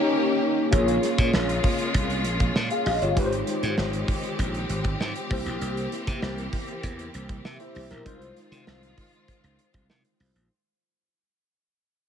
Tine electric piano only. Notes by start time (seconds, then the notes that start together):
Already playing: A#3 C#4 D#4 G4 C#5
0.71 A#3 F4 G#4 C#5
2.71 G#4 F5
2.86 G4 D#5
3.02 F4 C#5
3.16 G#3 D#4 G4 B4
3.25 C5
5.30 A#3 E4 G4 C5
7.45 G4 E5
7.60 E4 C5
7.91 A#4
8.05 G#3 D#4 F4 C5